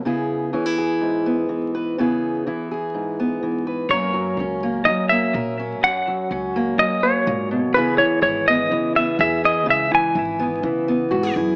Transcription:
<<
  \new Staff \with { instrumentName = "Clean electric guitar" } { \time 4/4 \key fis \mixolydian \tempo 4 = 125 r1 | r1 | cis''2 dis''8 e''4. | fis''2 dis''8 cis''4 r8 |
b'8 cis''8 cis''8 dis''4 e''8 e''8 dis''8 | e''8 gis''2. r8 | }
  \new Staff \with { instrumentName = "Steel-string acoustic guitar" } { \time 4/4 \key fis \mixolydian << { <b e' gis'>4 cis'16 e'16 gis'4 b4 b'8 | <b e' gis'>4 e'8 gis'4 b4 b'8 | <fis ais cis' ais'>4 cis'8 ais4 ais8 ais'8 cis'8~ | cis'4 cis'8 ais4 ais4. |
<e b e' gis'>4 e'8 b4 b8 gis'8 e'8 | r4 e'8 b4 b8 fis'16 gis'16 e'8 | } \\ { cis4 e4 gis,4 e4 | cis4 e4 gis,4 e4 | fis,8 fis4. fis2 | fis,8 fis4. fis4 ais,8 b,8 |
cis8 e4. e2 | cis8 e4. e2 | } >> }
  \new Staff \with { instrumentName = "Upright bass" } { \clef bass \time 4/4 \key fis \mixolydian r1 | r1 | fis,4 cis,4 fis4 ais,4 | fis,4 cis,4 fis4 gis,4 |
cis,4 gis,,4 cis4 e,4 | cis,4 gis,,4 cis4 gis,8 fis,8 | }
>>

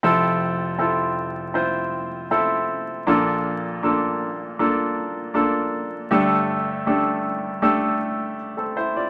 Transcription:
<<
  \new Staff \with { instrumentName = "Grand piano" } { \time 4/4 \key f \major \tempo 4 = 79 <c' e' f' a'>4 <c' e' f' a'>4 <c' e' f' c''>4 <c' e' f' a'>4 | <bes d' f' a'>4 <bes d' f' a'>4 <bes d' f' a'>4 <bes d' f' a'>4 | <a d' g' a'>4 <a d' g' a'>4 <a d' g' a'>4 r16 <c' a'>16 <e' c''>16 <f' d''>16 | }
  \new Staff \with { instrumentName = "Grand piano" } { \clef bass \time 4/4 \key f \major <f,, f,>1 | <bes,, bes,>1 | <g,, g,>1 | }
>>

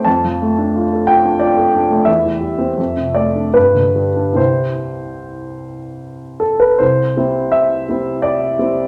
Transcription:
<<
  \new Staff \with { instrumentName = "Upright piano" } { \time 3/4 \key c \major \tempo 4 = 83 a''4. g''8 d''4 | e''4. d''8 b'4 | c''2~ c''8 a'16 b'16 | c''4 e''4 d''4 | }
  \new Staff \with { instrumentName = "Upright piano" } { \time 3/4 \key c \major f,16 f16 a16 d'16 f'16 a'16 f'16 d'16 f'16 a'16 d'16 a16 | e,16 e16 g16 c'16 f,16 c16 a16 d'16 g,16 d16 g16 d'16 | <c, g c' e'>2. | c,8 <g c' e'>4 <g c' e'>4 <g c' e'>8 | }
>>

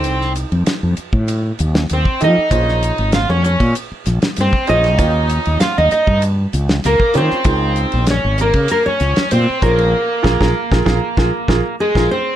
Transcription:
<<
  \new Staff \with { instrumentName = "Nylon-string guitar" } { \time 4/4 \key bes \dorian \tempo 4 = 97 c''8 r2 r8 c''8 ees''8~ | ees''4 f''16 des''16 des''8 r4 c''8 ees''8~ | ees''4 f''16 ees''16 ees''8 r4 bes'8 c''8~ | c''4 des''8 bes'8 bes'16 des''8. c''8 bes'8~ |
bes'2. aes'8 c''8 | }
  \new Staff \with { instrumentName = "Grand piano" } { \time 4/4 \key bes \dorian <ees' g' a' c''>4 r2 r8 <ees' g' a' ees''>8 | <des' f' aes' c''>4. r2 <des' f' aes' c''>8 | <des' f' g' bes'>4. r2 <des' f' g' bes'>8 | <ees' f' aes' bes'>4. r2 <des' f' aes' c''>8 |
r8 <f' aes' bes'>16 <f' aes' bes'>16 r16 <f' aes' bes'>16 <f' aes' bes'>16 r16 <f' aes' bes'>16 r16 <f' aes' bes'>16 r8 <f' aes' bes'>16 r8 | }
  \new Staff \with { instrumentName = "Overdriven electric guitar" } { \time 4/4 \key bes \dorian c'8 r2 r8 c'8 ees'8~ | ees'4 f'16 des'16 des'8 r4 c'8 ees'8~ | ees'4 f'16 ees'16 ees'8 r4 bes8 c'8~ | c'4 des'8 bes8 bes16 des'8. c'8 bes8~ |
bes2. aes8 c'8 | }
  \new Staff \with { instrumentName = "Fretless electric bass" } { \clef bass \time 4/4 \key bes \dorian c,8. f,16 r16 f,16 r16 a,8. ees,8 ees,16 r16 f16 r16 | bes,,8. aes,,8 f,8 bes,16 r8 bes,,16 r16 g,16 r16 bes,,8 | ees,8. ees,16 r16 ees,16 r16 g,8. des,8 des,16 r16 ees16 r16 | des,8. bes,,8 aes,,8 des16 r8 des,16 r16 bes,16 r16 bes,,8 |
r8 bes,,16 bes,,16 r16 bes,,16 bes,,16 r16 bes,,16 r16 bes,,16 r8 bes,,16 r8 | }
  \new DrumStaff \with { instrumentName = "Drums" } \drummode { \time 4/4 <hhp cymr>16 sn16 <hhp cymr>16 cymr16 <hhp cymr sn>8 <hhp cymr>16 bd16 <hhp cymr>8 <hhp cymr>16 sn16 <hhp cymr>16 bd16 <hhp cymr>8 | <hhp bd cymr>16 sn16 <hhp cymr>16 cymr16 <hhp cymr sn>8 <hhp cymr>16 <bd cymr>16 <hhp cymr>8 <hhp cymr sn>16 <cymr sn>16 <hhp cymr>16 bd16 <hhp cymr>16 <cymr sn>16 | <hhp bd cymr>8 <hhp cymr>16 cymr16 <hhp cymr sn>8 <hhp cymr>16 bd16 <hhp cymr>8 <hhp cymr>16 sn16 <hhp cymr>16 bd16 <hhp cymr>16 sn16 | <hhp bd cymr>8 <hhp cymr>16 cymr16 <hhp cymr sn>8 <hhp cymr>16 <bd cymr>16 <hhp cymr>8 <hhp cymr sn>16 <cymr sn>16 <hhp cymr>8 <hhp bd cymr>16 cymr16 |
r8 <bd sn>16 <bd sn>16 r16 <bd sn>16 <bd sn>8 <bd sn>8 <bd sn>8 r16 <bd sn>8. | }
>>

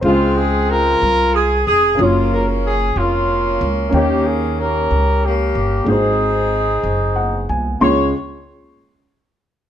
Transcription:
<<
  \new Staff \with { instrumentName = "Horn section" } { \time 6/8 \key des \major \tempo 4. = 62 << { f'8 aes'8 bes'4 aes'8 aes'8 | f'8 bes'8 aes'8 f'4 r8 | g'8 aes'8 bes'4 g'4 | aes'2~ aes'8 r8 |
des''8 r2 r8 | } \\ { <aes c'>4 f'4. r8 | <bes des'>4. <bes des'>4. | <bes des'>4 <des' g'>4 <bes des'>4 | <c' ees'>2~ <c' ees'>8 r8 |
r2. | } >> }
  \new Staff \with { instrumentName = "Upright piano" } { \time 6/8 \key des \major <aes f' aes' c'' f''>2. | <ges bes des' f' des''>2. | <bes des' ees' des'' g''>2. | <aes c' ees' ges' c''>2. |
<aes des' f' c'''>8 r2 r8 | }
  \new Staff \with { instrumentName = "Upright piano" } { \clef bass \time 6/8 \key des \major des4. r4. | r2. | ees4. r4. | aes,4. r8 ges''8 aes''8 |
des,8 r2 r8 | }
  \new Staff \with { instrumentName = "Upright bass" } { \clef bass \time 6/8 \key des \major des,4. c,4 f,,8 | ges,,4. f,,4 des,8 | ees,4. des,4 g,,8 | aes,,4. ges,,4 c,8 |
des,8 r2 r8 | }
>>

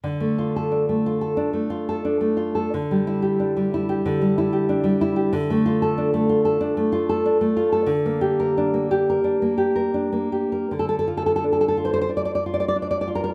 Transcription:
\new Staff \with { instrumentName = "Nylon-string guitar" } { \time 4/4 \key d \minor \tempo 4 = 91 << { r1 | r1 | r1 | r1 |
r32 a'32 a'32 a'32 r32 a'32 a'32 a'32 r32 a'32 a'32 a'32 r32 c''32 c''32 c''32 r32 d''32 d''32 d''32 r32 d''32 d''32 d''32 r32 d''32 d''32 d''32 r32 bes'32 bes'32 r32 | } \\ { d16 a16 f'16 a'16 d'16 a16 f'16 a'16 d'16 a16 f'16 a'16 d'16 a16 f'16 a'16 | d16 g16 e'16 g'16 d'16 g16 e'16 g'16 d16 g16 e'16 g'16 d'16 g16 e'16 g'16 | d16 a16 f'16 a'16 d'16 a16 f'16 a'16 d'16 a16 f'16 a'16 d'16 a16 f'16 a'16 | d16 bes16 g'16 bes'16 d'16 bes16 g'16 bes'16 d'16 bes16 g'16 bes'16 d'16 bes16 g'16 bes'16 |
d8 f'8 d'8 f'8 d'8 f'8 d'8 f'8 | } >> }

